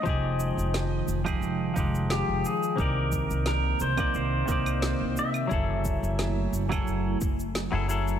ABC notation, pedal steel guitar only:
X:1
M:4/4
L:1/8
Q:"Swing 16ths" 1/4=88
K:Fm
V:1 name="Pedal steel guitar"
e3 z3 G A | B2 B c c3 =e- | =e3 z4 z |]